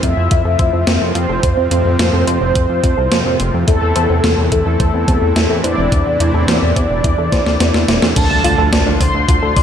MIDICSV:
0, 0, Header, 1, 7, 480
1, 0, Start_track
1, 0, Tempo, 560748
1, 1228, Time_signature, 4, 2, 24, 8
1, 8242, End_track
2, 0, Start_track
2, 0, Title_t, "Analog polysynth"
2, 0, Program_c, 0, 90
2, 27, Note_on_c, 0, 76, 98
2, 891, Note_off_c, 0, 76, 0
2, 987, Note_on_c, 0, 72, 109
2, 3052, Note_off_c, 0, 72, 0
2, 3148, Note_on_c, 0, 69, 107
2, 3772, Note_off_c, 0, 69, 0
2, 3870, Note_on_c, 0, 69, 101
2, 4733, Note_off_c, 0, 69, 0
2, 4831, Note_on_c, 0, 74, 104
2, 6894, Note_off_c, 0, 74, 0
2, 6988, Note_on_c, 0, 81, 109
2, 7612, Note_off_c, 0, 81, 0
2, 7709, Note_on_c, 0, 84, 103
2, 8242, Note_off_c, 0, 84, 0
2, 8242, End_track
3, 0, Start_track
3, 0, Title_t, "Synth arpeggio sound"
3, 0, Program_c, 1, 84
3, 28, Note_on_c, 1, 60, 104
3, 97, Note_off_c, 1, 60, 0
3, 267, Note_on_c, 1, 65, 82
3, 371, Note_off_c, 1, 65, 0
3, 387, Note_on_c, 1, 69, 77
3, 429, Note_off_c, 1, 69, 0
3, 508, Note_on_c, 1, 72, 99
3, 549, Note_off_c, 1, 72, 0
3, 626, Note_on_c, 1, 60, 76
3, 696, Note_off_c, 1, 60, 0
3, 747, Note_on_c, 1, 60, 98
3, 817, Note_off_c, 1, 60, 0
3, 987, Note_on_c, 1, 65, 75
3, 1091, Note_off_c, 1, 65, 0
3, 1106, Note_on_c, 1, 69, 75
3, 1149, Note_off_c, 1, 69, 0
3, 1227, Note_on_c, 1, 72, 106
3, 1269, Note_off_c, 1, 72, 0
3, 1348, Note_on_c, 1, 60, 75
3, 1417, Note_off_c, 1, 60, 0
3, 1467, Note_on_c, 1, 60, 102
3, 1537, Note_off_c, 1, 60, 0
3, 1706, Note_on_c, 1, 65, 86
3, 1811, Note_off_c, 1, 65, 0
3, 1826, Note_on_c, 1, 69, 74
3, 1869, Note_off_c, 1, 69, 0
3, 1946, Note_on_c, 1, 72, 105
3, 1988, Note_off_c, 1, 72, 0
3, 2066, Note_on_c, 1, 60, 77
3, 2136, Note_off_c, 1, 60, 0
3, 2187, Note_on_c, 1, 60, 96
3, 2257, Note_off_c, 1, 60, 0
3, 2427, Note_on_c, 1, 65, 74
3, 2531, Note_off_c, 1, 65, 0
3, 2546, Note_on_c, 1, 69, 76
3, 2589, Note_off_c, 1, 69, 0
3, 2667, Note_on_c, 1, 72, 101
3, 2709, Note_off_c, 1, 72, 0
3, 2787, Note_on_c, 1, 60, 77
3, 2857, Note_off_c, 1, 60, 0
3, 2906, Note_on_c, 1, 60, 102
3, 2976, Note_off_c, 1, 60, 0
3, 3145, Note_on_c, 1, 64, 86
3, 3250, Note_off_c, 1, 64, 0
3, 3266, Note_on_c, 1, 69, 79
3, 3309, Note_off_c, 1, 69, 0
3, 3387, Note_on_c, 1, 72, 103
3, 3429, Note_off_c, 1, 72, 0
3, 3507, Note_on_c, 1, 60, 78
3, 3577, Note_off_c, 1, 60, 0
3, 3627, Note_on_c, 1, 60, 102
3, 3697, Note_off_c, 1, 60, 0
3, 3867, Note_on_c, 1, 64, 80
3, 3971, Note_off_c, 1, 64, 0
3, 3988, Note_on_c, 1, 69, 74
3, 4029, Note_off_c, 1, 69, 0
3, 4108, Note_on_c, 1, 72, 99
3, 4150, Note_off_c, 1, 72, 0
3, 4229, Note_on_c, 1, 60, 79
3, 4298, Note_off_c, 1, 60, 0
3, 4348, Note_on_c, 1, 60, 100
3, 4417, Note_off_c, 1, 60, 0
3, 4589, Note_on_c, 1, 64, 80
3, 4692, Note_off_c, 1, 64, 0
3, 4709, Note_on_c, 1, 69, 79
3, 4750, Note_off_c, 1, 69, 0
3, 4827, Note_on_c, 1, 72, 98
3, 4869, Note_off_c, 1, 72, 0
3, 4948, Note_on_c, 1, 60, 74
3, 5017, Note_off_c, 1, 60, 0
3, 5067, Note_on_c, 1, 60, 104
3, 5137, Note_off_c, 1, 60, 0
3, 5309, Note_on_c, 1, 64, 79
3, 5412, Note_off_c, 1, 64, 0
3, 5429, Note_on_c, 1, 69, 77
3, 5470, Note_off_c, 1, 69, 0
3, 5549, Note_on_c, 1, 72, 102
3, 5590, Note_off_c, 1, 72, 0
3, 5670, Note_on_c, 1, 60, 78
3, 5738, Note_off_c, 1, 60, 0
3, 5789, Note_on_c, 1, 60, 107
3, 5858, Note_off_c, 1, 60, 0
3, 6030, Note_on_c, 1, 64, 81
3, 6133, Note_off_c, 1, 64, 0
3, 6149, Note_on_c, 1, 69, 78
3, 6190, Note_off_c, 1, 69, 0
3, 6269, Note_on_c, 1, 72, 101
3, 6310, Note_off_c, 1, 72, 0
3, 6389, Note_on_c, 1, 60, 75
3, 6457, Note_off_c, 1, 60, 0
3, 6509, Note_on_c, 1, 60, 99
3, 6578, Note_off_c, 1, 60, 0
3, 6748, Note_on_c, 1, 64, 74
3, 6852, Note_off_c, 1, 64, 0
3, 6868, Note_on_c, 1, 69, 75
3, 6910, Note_off_c, 1, 69, 0
3, 6987, Note_on_c, 1, 62, 86
3, 7057, Note_off_c, 1, 62, 0
3, 7227, Note_on_c, 1, 65, 104
3, 7297, Note_off_c, 1, 65, 0
3, 7348, Note_on_c, 1, 69, 105
3, 7452, Note_off_c, 1, 69, 0
3, 7469, Note_on_c, 1, 74, 87
3, 7538, Note_off_c, 1, 74, 0
3, 7589, Note_on_c, 1, 62, 80
3, 7658, Note_off_c, 1, 62, 0
3, 7709, Note_on_c, 1, 62, 79
3, 7778, Note_off_c, 1, 62, 0
3, 7948, Note_on_c, 1, 65, 101
3, 8017, Note_off_c, 1, 65, 0
3, 8068, Note_on_c, 1, 69, 104
3, 8172, Note_off_c, 1, 69, 0
3, 8188, Note_on_c, 1, 74, 77
3, 8242, Note_off_c, 1, 74, 0
3, 8242, End_track
4, 0, Start_track
4, 0, Title_t, "Supersaw synth"
4, 0, Program_c, 2, 81
4, 0, Note_on_c, 2, 45, 85
4, 0, Note_on_c, 2, 48, 79
4, 0, Note_on_c, 2, 53, 76
4, 0, Note_on_c, 2, 60, 79
4, 0, Note_on_c, 2, 65, 93
4, 3112, Note_off_c, 2, 45, 0
4, 3112, Note_off_c, 2, 65, 0
4, 3114, Note_off_c, 2, 53, 0
4, 3115, Note_off_c, 2, 60, 0
4, 3149, Note_on_c, 2, 45, 86
4, 3149, Note_on_c, 2, 52, 76
4, 3151, Note_on_c, 2, 60, 80
4, 3151, Note_on_c, 2, 64, 95
4, 6954, Note_off_c, 2, 45, 0
4, 6954, Note_off_c, 2, 48, 0
4, 6954, Note_off_c, 2, 52, 0
4, 6955, Note_off_c, 2, 60, 0
4, 6955, Note_off_c, 2, 64, 0
4, 6988, Note_on_c, 2, 62, 81
4, 6989, Note_on_c, 2, 45, 88
4, 6989, Note_on_c, 2, 50, 79
4, 6989, Note_on_c, 2, 53, 78
4, 6989, Note_on_c, 2, 65, 95
4, 8242, Note_off_c, 2, 45, 0
4, 8242, Note_off_c, 2, 50, 0
4, 8242, Note_off_c, 2, 53, 0
4, 8242, Note_off_c, 2, 62, 0
4, 8242, Note_off_c, 2, 65, 0
4, 8242, End_track
5, 0, Start_track
5, 0, Title_t, "Analog synth bass"
5, 0, Program_c, 3, 38
5, 28, Note_on_c, 3, 41, 92
5, 122, Note_off_c, 3, 41, 0
5, 147, Note_on_c, 3, 41, 83
5, 241, Note_off_c, 3, 41, 0
5, 267, Note_on_c, 3, 41, 103
5, 362, Note_off_c, 3, 41, 0
5, 386, Note_on_c, 3, 41, 81
5, 481, Note_off_c, 3, 41, 0
5, 508, Note_on_c, 3, 41, 92
5, 602, Note_off_c, 3, 41, 0
5, 627, Note_on_c, 3, 41, 78
5, 722, Note_off_c, 3, 41, 0
5, 746, Note_on_c, 3, 41, 103
5, 841, Note_off_c, 3, 41, 0
5, 867, Note_on_c, 3, 41, 75
5, 961, Note_off_c, 3, 41, 0
5, 987, Note_on_c, 3, 41, 91
5, 1081, Note_off_c, 3, 41, 0
5, 1107, Note_on_c, 3, 29, 81
5, 1201, Note_off_c, 3, 29, 0
5, 1228, Note_on_c, 3, 41, 103
5, 1322, Note_off_c, 3, 41, 0
5, 1347, Note_on_c, 3, 41, 78
5, 1441, Note_off_c, 3, 41, 0
5, 1467, Note_on_c, 3, 41, 96
5, 1561, Note_off_c, 3, 41, 0
5, 1587, Note_on_c, 3, 41, 79
5, 1681, Note_off_c, 3, 41, 0
5, 1707, Note_on_c, 3, 41, 107
5, 1801, Note_off_c, 3, 41, 0
5, 1827, Note_on_c, 3, 41, 70
5, 1921, Note_off_c, 3, 41, 0
5, 1945, Note_on_c, 3, 41, 93
5, 2040, Note_off_c, 3, 41, 0
5, 2067, Note_on_c, 3, 29, 81
5, 2161, Note_off_c, 3, 29, 0
5, 2187, Note_on_c, 3, 41, 105
5, 2282, Note_off_c, 3, 41, 0
5, 2306, Note_on_c, 3, 41, 80
5, 2401, Note_off_c, 3, 41, 0
5, 2429, Note_on_c, 3, 41, 99
5, 2522, Note_off_c, 3, 41, 0
5, 2549, Note_on_c, 3, 36, 82
5, 2642, Note_off_c, 3, 36, 0
5, 2668, Note_on_c, 3, 41, 101
5, 2762, Note_off_c, 3, 41, 0
5, 2790, Note_on_c, 3, 41, 76
5, 2883, Note_off_c, 3, 41, 0
5, 2910, Note_on_c, 3, 29, 92
5, 3003, Note_off_c, 3, 29, 0
5, 3033, Note_on_c, 3, 41, 81
5, 3124, Note_off_c, 3, 41, 0
5, 3148, Note_on_c, 3, 40, 100
5, 3242, Note_off_c, 3, 40, 0
5, 3271, Note_on_c, 3, 40, 76
5, 3363, Note_off_c, 3, 40, 0
5, 3390, Note_on_c, 3, 40, 99
5, 3483, Note_off_c, 3, 40, 0
5, 3510, Note_on_c, 3, 40, 80
5, 3603, Note_off_c, 3, 40, 0
5, 3629, Note_on_c, 3, 40, 103
5, 3722, Note_off_c, 3, 40, 0
5, 3749, Note_on_c, 3, 40, 76
5, 3842, Note_off_c, 3, 40, 0
5, 3868, Note_on_c, 3, 40, 91
5, 3962, Note_off_c, 3, 40, 0
5, 3988, Note_on_c, 3, 40, 82
5, 4082, Note_off_c, 3, 40, 0
5, 4109, Note_on_c, 3, 40, 105
5, 4203, Note_off_c, 3, 40, 0
5, 4229, Note_on_c, 3, 40, 80
5, 4322, Note_off_c, 3, 40, 0
5, 4349, Note_on_c, 3, 40, 96
5, 4442, Note_off_c, 3, 40, 0
5, 4467, Note_on_c, 3, 40, 84
5, 4561, Note_off_c, 3, 40, 0
5, 4588, Note_on_c, 3, 40, 100
5, 4682, Note_off_c, 3, 40, 0
5, 4708, Note_on_c, 3, 40, 75
5, 4802, Note_off_c, 3, 40, 0
5, 4828, Note_on_c, 3, 40, 95
5, 4922, Note_off_c, 3, 40, 0
5, 4948, Note_on_c, 3, 28, 82
5, 5042, Note_off_c, 3, 28, 0
5, 5069, Note_on_c, 3, 40, 103
5, 5163, Note_off_c, 3, 40, 0
5, 5189, Note_on_c, 3, 40, 76
5, 5282, Note_off_c, 3, 40, 0
5, 5308, Note_on_c, 3, 40, 99
5, 5402, Note_off_c, 3, 40, 0
5, 5429, Note_on_c, 3, 40, 84
5, 5522, Note_off_c, 3, 40, 0
5, 5548, Note_on_c, 3, 40, 102
5, 5642, Note_off_c, 3, 40, 0
5, 5669, Note_on_c, 3, 40, 74
5, 5763, Note_off_c, 3, 40, 0
5, 5789, Note_on_c, 3, 40, 92
5, 5882, Note_off_c, 3, 40, 0
5, 5908, Note_on_c, 3, 28, 81
5, 6002, Note_off_c, 3, 28, 0
5, 6028, Note_on_c, 3, 40, 104
5, 6122, Note_off_c, 3, 40, 0
5, 6147, Note_on_c, 3, 40, 76
5, 6242, Note_off_c, 3, 40, 0
5, 6268, Note_on_c, 3, 40, 96
5, 6362, Note_off_c, 3, 40, 0
5, 6388, Note_on_c, 3, 38, 79
5, 6482, Note_off_c, 3, 38, 0
5, 6508, Note_on_c, 3, 40, 100
5, 6602, Note_off_c, 3, 40, 0
5, 6630, Note_on_c, 3, 40, 77
5, 6723, Note_off_c, 3, 40, 0
5, 6750, Note_on_c, 3, 28, 93
5, 6843, Note_off_c, 3, 28, 0
5, 6870, Note_on_c, 3, 40, 82
5, 6963, Note_off_c, 3, 40, 0
5, 6989, Note_on_c, 3, 38, 101
5, 7082, Note_off_c, 3, 38, 0
5, 7111, Note_on_c, 3, 38, 79
5, 7204, Note_off_c, 3, 38, 0
5, 7231, Note_on_c, 3, 38, 98
5, 7323, Note_off_c, 3, 38, 0
5, 7351, Note_on_c, 3, 38, 84
5, 7443, Note_off_c, 3, 38, 0
5, 7468, Note_on_c, 3, 38, 104
5, 7562, Note_off_c, 3, 38, 0
5, 7591, Note_on_c, 3, 38, 76
5, 7683, Note_off_c, 3, 38, 0
5, 7708, Note_on_c, 3, 38, 95
5, 7802, Note_off_c, 3, 38, 0
5, 7830, Note_on_c, 3, 38, 84
5, 7923, Note_off_c, 3, 38, 0
5, 7948, Note_on_c, 3, 38, 108
5, 8042, Note_off_c, 3, 38, 0
5, 8069, Note_on_c, 3, 38, 80
5, 8163, Note_off_c, 3, 38, 0
5, 8189, Note_on_c, 3, 38, 97
5, 8242, Note_off_c, 3, 38, 0
5, 8242, End_track
6, 0, Start_track
6, 0, Title_t, "Impact"
6, 0, Program_c, 4, 103
6, 6989, Note_on_c, 4, 60, 78
6, 8242, Note_off_c, 4, 60, 0
6, 8242, End_track
7, 0, Start_track
7, 0, Title_t, "Drums"
7, 25, Note_on_c, 9, 42, 62
7, 28, Note_on_c, 9, 36, 62
7, 111, Note_off_c, 9, 42, 0
7, 113, Note_off_c, 9, 36, 0
7, 265, Note_on_c, 9, 42, 85
7, 268, Note_on_c, 9, 36, 118
7, 351, Note_off_c, 9, 42, 0
7, 353, Note_off_c, 9, 36, 0
7, 506, Note_on_c, 9, 42, 60
7, 508, Note_on_c, 9, 36, 104
7, 592, Note_off_c, 9, 42, 0
7, 593, Note_off_c, 9, 36, 0
7, 746, Note_on_c, 9, 38, 118
7, 746, Note_on_c, 9, 42, 89
7, 832, Note_off_c, 9, 38, 0
7, 832, Note_off_c, 9, 42, 0
7, 987, Note_on_c, 9, 42, 61
7, 1072, Note_off_c, 9, 42, 0
7, 1226, Note_on_c, 9, 42, 84
7, 1228, Note_on_c, 9, 36, 113
7, 1312, Note_off_c, 9, 42, 0
7, 1313, Note_off_c, 9, 36, 0
7, 1466, Note_on_c, 9, 42, 62
7, 1552, Note_off_c, 9, 42, 0
7, 1707, Note_on_c, 9, 38, 114
7, 1707, Note_on_c, 9, 42, 87
7, 1792, Note_off_c, 9, 38, 0
7, 1792, Note_off_c, 9, 42, 0
7, 1947, Note_on_c, 9, 42, 62
7, 2033, Note_off_c, 9, 42, 0
7, 2187, Note_on_c, 9, 42, 88
7, 2188, Note_on_c, 9, 36, 114
7, 2272, Note_off_c, 9, 42, 0
7, 2273, Note_off_c, 9, 36, 0
7, 2428, Note_on_c, 9, 36, 99
7, 2428, Note_on_c, 9, 42, 61
7, 2513, Note_off_c, 9, 36, 0
7, 2513, Note_off_c, 9, 42, 0
7, 2667, Note_on_c, 9, 38, 109
7, 2667, Note_on_c, 9, 42, 87
7, 2753, Note_off_c, 9, 38, 0
7, 2753, Note_off_c, 9, 42, 0
7, 2908, Note_on_c, 9, 42, 63
7, 2993, Note_off_c, 9, 42, 0
7, 3148, Note_on_c, 9, 36, 110
7, 3148, Note_on_c, 9, 42, 91
7, 3233, Note_off_c, 9, 36, 0
7, 3234, Note_off_c, 9, 42, 0
7, 3387, Note_on_c, 9, 42, 65
7, 3473, Note_off_c, 9, 42, 0
7, 3628, Note_on_c, 9, 38, 109
7, 3628, Note_on_c, 9, 42, 90
7, 3713, Note_off_c, 9, 38, 0
7, 3713, Note_off_c, 9, 42, 0
7, 3868, Note_on_c, 9, 36, 56
7, 3868, Note_on_c, 9, 42, 65
7, 3953, Note_off_c, 9, 36, 0
7, 3954, Note_off_c, 9, 42, 0
7, 4108, Note_on_c, 9, 36, 116
7, 4109, Note_on_c, 9, 42, 93
7, 4194, Note_off_c, 9, 36, 0
7, 4195, Note_off_c, 9, 42, 0
7, 4348, Note_on_c, 9, 36, 98
7, 4349, Note_on_c, 9, 42, 63
7, 4434, Note_off_c, 9, 36, 0
7, 4434, Note_off_c, 9, 42, 0
7, 4589, Note_on_c, 9, 38, 111
7, 4589, Note_on_c, 9, 42, 89
7, 4675, Note_off_c, 9, 38, 0
7, 4675, Note_off_c, 9, 42, 0
7, 4830, Note_on_c, 9, 42, 64
7, 4915, Note_off_c, 9, 42, 0
7, 5069, Note_on_c, 9, 36, 116
7, 5069, Note_on_c, 9, 42, 95
7, 5154, Note_off_c, 9, 36, 0
7, 5155, Note_off_c, 9, 42, 0
7, 5310, Note_on_c, 9, 42, 66
7, 5396, Note_off_c, 9, 42, 0
7, 5549, Note_on_c, 9, 38, 114
7, 5549, Note_on_c, 9, 42, 92
7, 5635, Note_off_c, 9, 38, 0
7, 5635, Note_off_c, 9, 42, 0
7, 5789, Note_on_c, 9, 36, 57
7, 5790, Note_on_c, 9, 42, 68
7, 5874, Note_off_c, 9, 36, 0
7, 5876, Note_off_c, 9, 42, 0
7, 6028, Note_on_c, 9, 36, 117
7, 6030, Note_on_c, 9, 42, 94
7, 6114, Note_off_c, 9, 36, 0
7, 6116, Note_off_c, 9, 42, 0
7, 6268, Note_on_c, 9, 36, 101
7, 6270, Note_on_c, 9, 38, 62
7, 6270, Note_on_c, 9, 42, 67
7, 6354, Note_off_c, 9, 36, 0
7, 6355, Note_off_c, 9, 38, 0
7, 6355, Note_off_c, 9, 42, 0
7, 6390, Note_on_c, 9, 38, 59
7, 6475, Note_off_c, 9, 38, 0
7, 6509, Note_on_c, 9, 38, 76
7, 6509, Note_on_c, 9, 42, 90
7, 6595, Note_off_c, 9, 38, 0
7, 6595, Note_off_c, 9, 42, 0
7, 6629, Note_on_c, 9, 38, 73
7, 6714, Note_off_c, 9, 38, 0
7, 6749, Note_on_c, 9, 38, 95
7, 6749, Note_on_c, 9, 42, 67
7, 6835, Note_off_c, 9, 38, 0
7, 6835, Note_off_c, 9, 42, 0
7, 6869, Note_on_c, 9, 38, 89
7, 6954, Note_off_c, 9, 38, 0
7, 6988, Note_on_c, 9, 42, 100
7, 6988, Note_on_c, 9, 49, 108
7, 6989, Note_on_c, 9, 36, 116
7, 7073, Note_off_c, 9, 42, 0
7, 7073, Note_off_c, 9, 49, 0
7, 7074, Note_off_c, 9, 36, 0
7, 7229, Note_on_c, 9, 46, 87
7, 7314, Note_off_c, 9, 46, 0
7, 7470, Note_on_c, 9, 38, 115
7, 7470, Note_on_c, 9, 42, 94
7, 7555, Note_off_c, 9, 38, 0
7, 7555, Note_off_c, 9, 42, 0
7, 7708, Note_on_c, 9, 36, 60
7, 7709, Note_on_c, 9, 46, 88
7, 7794, Note_off_c, 9, 36, 0
7, 7795, Note_off_c, 9, 46, 0
7, 7948, Note_on_c, 9, 36, 120
7, 7949, Note_on_c, 9, 42, 100
7, 8034, Note_off_c, 9, 36, 0
7, 8034, Note_off_c, 9, 42, 0
7, 8188, Note_on_c, 9, 36, 106
7, 8188, Note_on_c, 9, 46, 85
7, 8242, Note_off_c, 9, 36, 0
7, 8242, Note_off_c, 9, 46, 0
7, 8242, End_track
0, 0, End_of_file